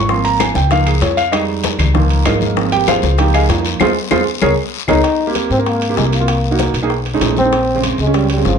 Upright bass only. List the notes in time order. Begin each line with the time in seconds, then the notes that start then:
Already playing: G#1
0.55 C#2
1.01 F2
1.78 C#2
2.26 G#1
3.03 C#2
3.49 F2
3.80 F2
4.11 F2
4.42 C#2
4.88 C#2
5.50 G#2
5.97 C2
6.74 B1
7.20 A#1
7.98 C#2
8.44 G1